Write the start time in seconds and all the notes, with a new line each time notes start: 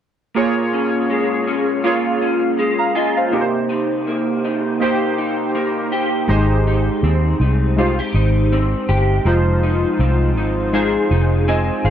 0.35 A#2 A#3 F4 G#4 C#5
0.73 C#4
1.10 G#3
1.47 C#4
1.84 A#3 F4 G#4 C#5
2.21 C#4
2.59 G#3
2.79 F5 A#5
2.95 F4 D#5 G#5
3.17 C5 F5
3.32 C3 A#3 D#4 G4 A#4
3.41 C5
3.69 D#4
4.07 A#3
4.44 D#4
4.80 A#3 D#4 G4 C5
5.18 D#4
5.55 A#3
5.92 G4
6.28 G#1 G#3 D#4 G4 C5
6.67 D#4
7.03 D#2 C4
7.40 C2 D#4
7.77 G#3 D#4 F4 G4 C5
7.99 G4
8.14 G#1 D#4
8.52 C4
8.89 G1 G4
9.25 F1 F3 G#3 D#4 F4 C5
9.63 D#4
9.99 C2 C4
10.37 G#1 D#4
10.73 G#3 D#4 F4 G#4 C5
11.11 F1 D#4
11.48 C4 D#5 G#5
11.84 G#1 G#4 C5 F5